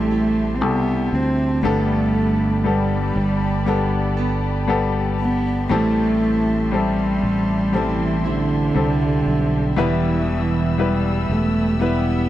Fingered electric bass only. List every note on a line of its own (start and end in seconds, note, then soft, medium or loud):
0.00 0.61 A1 medium
0.61 1.09 C2 medium
1.13 1.65 D2 medium
1.63 3.12 G1 medium
3.16 5.66 G1 medium
5.70 7.19 A1 medium
7.23 8.72 A1 medium
8.75 9.23 C2 medium
9.26 9.74 B1 medium
9.77 11.26 E1 medium
11.29 12.29 E1 medium